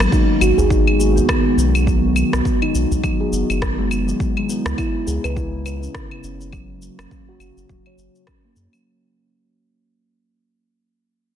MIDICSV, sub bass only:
0, 0, Header, 1, 2, 480
1, 0, Start_track
1, 0, Tempo, 582524
1, 1540, Time_signature, 4, 2, 24, 8
1, 9352, End_track
2, 0, Start_track
2, 0, Title_t, "Sub bass"
2, 0, Program_c, 0, 38
2, 338, Note_on_c, 0, 32, 83
2, 431, Note_off_c, 0, 32, 0
2, 477, Note_on_c, 0, 32, 100
2, 1004, Note_off_c, 0, 32, 0
2, 1296, Note_on_c, 0, 35, 93
2, 1841, Note_off_c, 0, 35, 0
2, 1922, Note_on_c, 0, 35, 98
2, 1987, Note_off_c, 0, 35, 0
2, 2264, Note_on_c, 0, 35, 87
2, 2353, Note_off_c, 0, 35, 0
2, 2401, Note_on_c, 0, 35, 95
2, 2466, Note_off_c, 0, 35, 0
2, 2739, Note_on_c, 0, 30, 89
2, 2831, Note_off_c, 0, 30, 0
2, 2882, Note_on_c, 0, 30, 78
2, 3406, Note_off_c, 0, 30, 0
2, 3838, Note_on_c, 0, 37, 93
2, 3905, Note_off_c, 0, 37, 0
2, 4181, Note_on_c, 0, 37, 78
2, 4272, Note_off_c, 0, 37, 0
2, 4322, Note_on_c, 0, 37, 99
2, 4846, Note_off_c, 0, 37, 0
2, 5139, Note_on_c, 0, 30, 97
2, 5682, Note_off_c, 0, 30, 0
2, 5757, Note_on_c, 0, 30, 98
2, 5824, Note_off_c, 0, 30, 0
2, 6095, Note_on_c, 0, 30, 79
2, 6189, Note_off_c, 0, 30, 0
2, 6238, Note_on_c, 0, 30, 88
2, 6305, Note_off_c, 0, 30, 0
2, 6340, Note_on_c, 0, 27, 78
2, 6431, Note_off_c, 0, 27, 0
2, 6575, Note_on_c, 0, 30, 78
2, 6669, Note_off_c, 0, 30, 0
2, 7056, Note_on_c, 0, 42, 89
2, 7149, Note_off_c, 0, 42, 0
2, 9352, End_track
0, 0, End_of_file